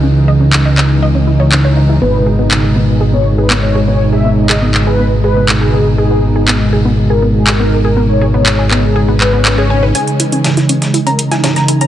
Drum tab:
HH |----------------|----------------|----------------|----------------|
CP |----x-x-----x---|----x-------x---|----x-x-----x---|----x-------x---|
SD |----------------|----------------|----------------|----------------|
T2 |----------------|----------------|----------------|----------------|

HH |----------------|xxxxxxxxxxxxxxxx|
CP |----x-x---x-x---|----------------|
SD |----------------|----oo-o---ooo--|
T2 |----------------|----o-------o---|